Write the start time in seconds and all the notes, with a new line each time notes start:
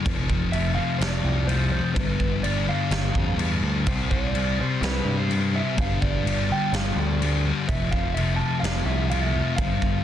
0.04 F1 F2 C3 F3, kick, crash
0.30 kick
0.52 F2 C3 F3 E5, crash
0.75 C3 F3 F5
0.79 F2
0.98 F1 D5, crash
1.02 snare
1.24 C2
1.47 F2 C3 F3 C5, crash
1.70 C3 F3 C5
1.94 G1 G2 D3 G3 C5, kick, crash
2.05 B4
2.20 kick
2.43 G2 D3 G3 D5, crash
2.67 G2 D3 G3 F5
2.91 G1, snare, crash
3.15 F2, kick
3.38 E2 G2 D3 G3, crash
3.61 D2 D3 G3
3.84 C2 C3 G3 C4 C5, kick, crash
4.11 D5, kick
4.33 C3 G3 C4, crash
4.58 C3 G3 C4 C5
4.81 C2 B4, snare, crash
5.05 G2
5.19 C5
5.29 C3 G3 C4, crash
5.53 G3 C4 E5
5.77 G1 G2 D3 G3 F5, kick, crash
6.02 D5, kick
6.24 G2 D3 G3, crash
6.48 G2 D3 G3 G5
6.72 G1 F5, snare, crash
6.96 D2 D5
7.20 G2 D3 G3, crash
7.45 D3 G3
7.68 F1 F2 C3 F3 E5, kick, crash
7.91 F5, kick
8.14 F2 C3 E5, crash
8.18 F3
8.36 F3 A5
8.41 F2 C3
8.60 F1 F5
8.64 snare, crash
8.85 C2 E5
9.10 F2 C3 F3 F5, crash
9.22 E5
9.34 C3 F3
9.56 G1 G2 D3 G3 F5, kick, crash
9.82 kick